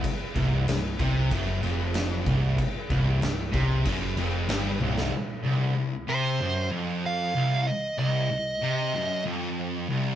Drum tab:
CC |x-x-x-x-x-x-x-x-|x-x-x-x-x-x-x---|----------------|----------------|
SD |----o-------o---|----o-------o--o|----------------|----------------|
T1 |----------------|--------------o-|----------------|----------------|
BD |o-o---o-o-----o-|o-o---o-o-------|----------------|----------------|